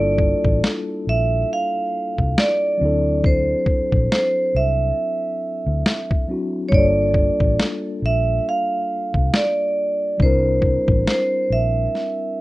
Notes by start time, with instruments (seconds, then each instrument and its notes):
Already playing: fingered electric bass G1, tine electric piano G3 A#3 D4 E4 F4 A4, vibraphone D5
0.18 kick
0.45 fingered electric bass A1, kick
0.64 snare
1.07 fingered electric bass A#1, vibraphone E5
1.53 vibraphone F5
2.18 fingered electric bass C2, kick
2.38 vibraphone D5, snare
2.78 fingered electric bass D2, tine electric piano F#3 C4
2.82 tine electric piano D4 E4 A4
3.24 vibraphone C5, kick
3.66 kick
3.92 fingered electric bass A#1, kick
4.12 vibraphone C5, snare
4.55 fingered electric bass C2, vibraphone E5
5.66 fingered electric bass D2
5.86 snare
6.11 kick
6.28 tine electric piano F#3 C4 D4 E4 F#4
6.69 fingered electric bass G1, tine electric piano G3 A#3, vibraphone C#5, kick
6.73 tine electric piano D4 F4 A4, vibraphone D5
7.14 kick
7.40 fingered electric bass A1, kick
7.60 snare
8.02 fingered electric bass A#1, vibraphone E5
8.49 vibraphone F5
9.14 fingered electric bass C2, kick
9.34 vibraphone D5, snare
10.18 fingered electric bass C2, tine electric piano G3 C4 D4, kick
10.22 tine electric piano E4 A#4, vibraphone C5
10.62 kick
10.88 fingered electric bass A1, kick
11.07 vibraphone C5, snare
11.50 fingered electric bass A#1, vibraphone E5
11.95 snare